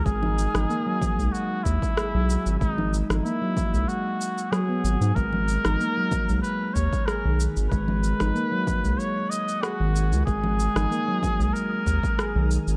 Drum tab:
SH |x-xxx-xxx-xxx-xx|x-xxx-xxx-xxx-xx|x-xxx-xxx-xxx-xx|x-xxx-xxx-xxx-xx|
SD |---r--------r---|---r--------r---|---r--------r---|---r--------r---|
CG |-O-O--O---------|-O-O--O---------|-O-O--O---------|-O-O--O---------|
BD |o-----o---oo----|o-----o---------|o-----o---oo----|o-----o---------|

SH |x-xxx-xxx-xxx-xx|
SD |---r--------r---|
CG |-O-O--O---------|
BD |o-----o---oo----|